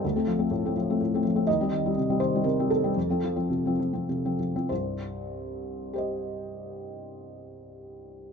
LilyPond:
<<
  \new Staff \with { instrumentName = "Felt piano" } { \time 3/4 \key c \dorian \tempo 4 = 105 << { r2. | r2. | r2. | r2 <g' c'' ees''>4~ |
<g' c'' ees''>2. | } \\ { a'2~ a'8 r8 | ees''4. c''8 bes'8 a'8~ | a'2~ a'8 r8 | c''2.~ |
c''2. | } >> }
  \new Staff \with { instrumentName = "Felt piano" } { \clef bass \time 3/4 \key c \dorian d,16 <a c'>16 f16 <a c'>16 a,16 <a c'>16 f16 <a c'>16 a,16 <a c'>16 f16 <a c'>16 | ees,16 <g c'>16 ees16 <g c'>16 c16 <g c'>16 ees16 <g c'>16 c16 <g c'>16 ees16 <g c'>16 | f,16 <f c'>16 f16 <f c'>16 c16 <f c'>16 f16 <f c'>16 c16 <f c'>16 f16 <f c'>16 | <c, g,>2.~ |
<c, g,>2. | }
>>